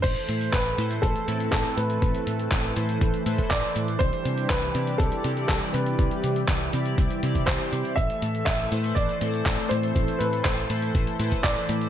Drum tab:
CC |x---------------|----------------|----------------|----------------|
HH |xxxxxxxxxxxxxxxx|xxxxxxxxxxxxxxxx|xxxxxxxxxxxxxxxx|xxxxxxxxxxxxxxxx|
CP |----x-------x---|----x-------x---|----x-------x---|----x-------x---|
BD |o---o---o---o---|o---o---o--oo---|o---o---o---o---|o---o---o--oo---|

CC |----------------|----------------|
HH |xxxxxxxxxxxxxxxx|xxxxxxxxxxxxxxxx|
CP |----x-------x---|----x-------x---|
BD |o---o---o---o---|o---o---o--oo---|